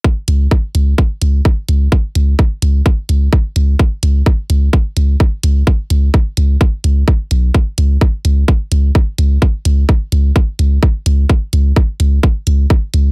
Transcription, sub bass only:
0.28 0.47 C#2 loud
0.75 0.94 C#2 medium
1.22 1.41 C#2 medium
1.69 1.88 C#2 medium
2.15 2.34 C#2 loud
2.62 2.81 C#2 medium
3.09 3.28 C#2 medium
3.56 3.75 C#2 loud
4.03 4.22 C#2 loud
4.50 4.69 C#2 medium
4.97 5.16 C#2 medium
5.44 5.63 C#2 medium
5.90 6.09 C#2 loud
6.37 6.56 C#2 loud
6.84 7.03 C#2 medium
7.31 7.50 B1 medium
7.78 7.97 C#2 loud
8.25 8.44 C#2 medium
8.72 8.91 C#2 medium
9.18 9.37 C#2 loud
9.65 9.84 C#2 loud
10.12 10.31 C#2 medium
10.59 10.78 C#2 medium
11.06 11.25 C#2 medium
11.53 11.72 C#2 loud
12.00 12.19 C#2 medium
12.47 12.66 C#2 medium
12.94 13.12 C#2 medium

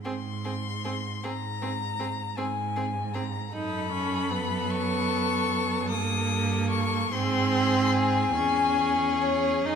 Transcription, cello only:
0.04 1.10 G#2 medium
1.23 2.23 G#2 medium
2.36 3.39 G#2 medium
3.52 5.91 F#2 medium
5.90 7.10 G2 medium
7.11 8.32 G#2 medium
8.34 9.62 E2 medium
9.65 9.75 F#2 medium

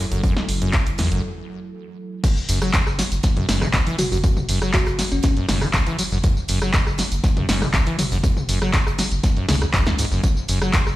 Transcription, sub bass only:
0.11 0.42 F#1 medium
0.49 0.80 F#1 loud
0.87 1.03 F#1 medium
1.12 1.20 F#1 loud
2.49 2.80 F#1 loud
2.86 3.03 F#1 medium
3.12 3.20 F#1 loud
3.49 3.66 F#1 medium
3.74 3.83 C#2 loud
4.12 4.43 F#1 medium
4.49 4.80 F#1 loud
4.87 5.04 F#1 medium
5.12 5.20 F#1 loud
5.49 5.66 F#1 medium
5.74 5.83 C#2 loud
6.12 6.43 F#1 medium
6.49 6.80 F#1 loud
6.87 7.03 F#1 medium
7.12 7.20 F#1 loud
7.49 7.66 F#1 medium
7.74 7.83 C#2 loud
8.12 8.43 F#1 medium
8.49 8.80 F#1 loud
8.87 9.03 F#1 medium
9.11 9.20 F#1 loud
9.49 9.66 C#2 loud
9.74 10.05 C#2 loud
10.12 10.20 F#1 loud
10.48 10.80 F#1 loud
10.87 10.96 F#1 medium

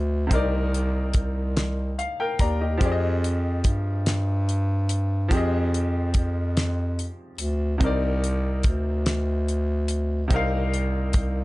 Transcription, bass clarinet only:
0.00 0.33 D2 medium
0.32 1.11 C2 loud
1.15 2.09 C2 medium
2.40 2.77 D#2 medium
2.81 3.60 F2 loud
3.65 5.27 G2 medium
5.31 6.11 F2 loud
6.15 7.13 F2 medium
7.39 7.83 D2 medium
7.81 8.61 C2 loud
8.65 10.33 D2 medium
10.31 11.10 C2 loud
11.15 11.44 C2 medium

